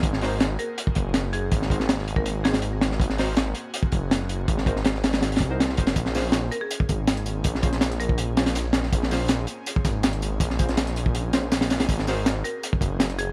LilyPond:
<<
  \new Staff \with { instrumentName = "Marimba" } { \time 4/4 \key aes \mixolydian \tempo 4 = 162 r4. bes'16 r4. r16 aes'8 | r4. r16 bes'8. aes'4. | r1 | r1 |
r4. bes'16 aes'8 r4. r16 | r4. bes'4. r4 | r1 | r1 |
r4. bes'16 r4. r16 aes'8 | }
  \new Staff \with { instrumentName = "Synth stab" } { \time 4/4 \key aes \mixolydian r8 <ees' ges' bes' c''>8 r2. | r8 <ees' ges' bes' c''>16 r4. r16 <ees' ges' bes' c''>16 r4 r16 | r8 <ees' ges' bes' c''>8 r2. | r8 <ees' ges' bes' c''>16 r2 <ees' ges' bes' c''>16 r8 <ees' ges' bes' c''>8 |
r8 <des' f' aes' c''>8 r2. | r8 <des' f' aes' c''>16 r4. r16 <des' f' aes' c''>16 r4 r16 | r8 <des' f' aes' c''>8 r2. | r8 <des' f' aes' c''>16 r4. r16 <des' f' aes' c''>16 r4 r16 |
r8 <ees' ges' bes' c''>8 r2. | }
  \new Staff \with { instrumentName = "Analog synth pad" } { \time 4/4 \key aes \mixolydian << { <bes c' aes'>1~ | <bes c' aes'>1~ | <bes c' aes'>1~ | <bes c' aes'>1 |
<bes c' aes'>1~ | <bes c' aes'>1~ | <bes c' aes'>1~ | <bes c' aes'>1~ |
<bes c' aes'>1 | } \\ { ges'1~ | ges'1~ | ges'1~ | ges'1 |
des'1~ | des'1~ | des'1~ | des'1 |
ges'1 | } >> }
  \new Staff \with { instrumentName = "Detuned saw bass" } { \clef bass \time 4/4 \key aes \mixolydian aes,,4. r4 ges,,4. | aes,,8. aes,,2.~ aes,,16 | aes,,4. r4 ges,,4. | aes,,8. aes,,4.~ aes,,16 c,4 ges,,8 |
bes,,4. r4 aes,,4. | bes,,8. bes,,2.~ bes,,16 | bes,,4. r4 aes,,4. | bes,,8. bes,,2.~ bes,,16 |
aes,,4. r4 ges,,4. | }
  \new DrumStaff \with { instrumentName = "Drums" } \drummode { \time 4/4 <hh bd>16 sn16 <hho sn>8 <hh sn>8 hh8 hh16 bd16 <hh bd>8 <hh sn>8 hh8 | <hh bd>16 sn16 <hh bd>16 sn16 <hh sn>16 sn16 hh16 bd16 hh8 <hh sn>16 <hh sn>16 hh8 <hh sn>16 sn16 | <hh bd>16 sn16 <hho sn>8 <hh sn>8 hh8 hh16 bd16 <hh bd>8 <hh sn>8 hh8 | <hh bd>16 sn16 <hh bd>16 sn16 <hh sn>16 sn16 <hh sn>16 <hh sn>16 <hh sn>16 hh32 <hh sn>32 <hh bd>8 <hh sn>16 sn16 <hh bd>16 <hh sn>16 |
<hh bd tamb>16 sn16 <hho sn tamb>8 <hh sn tamb>8 <hh tamb>8 <hh tamb>16 bd16 <hh bd tamb>8 <hh sn tamb>16 hh16 <hh tamb>8 | <hh bd tamb>16 sn16 <hh bd tamb>16 <hh sn>16 <hh sn tamb>16 <hh sn>16 <hh tamb>16 bd16 <hh tamb>8 <hh sn tamb>16 <hh sn>16 <hh sn tamb>16 sn16 <hh sn tamb>16 sn16 | <hh bd tamb>16 sn16 <hho sn tamb>8 <hh sn tamb>8 <hh tamb>8 <hh tamb>16 bd16 <hh bd sn tamb>8 <hh sn tamb>16 hh16 <hh tamb>8 | <hh bd tamb>16 sn16 <hh bd tamb>16 <hh sn>16 <hh sn tamb>16 <hh sn>16 <hh tamb>16 bd16 <hh tamb>8 <hh sn tamb>8 <hh sn tamb>16 <hh sn>16 <hh sn tamb>16 <hh sn>16 |
<hh bd tamb>16 sn16 <hho sn tamb>8 <hh sn tamb>8 <hh tamb>8 <hh tamb>16 bd16 <hh bd tamb>8 <hh sn tamb>16 hh16 <hh tamb>8 | }
>>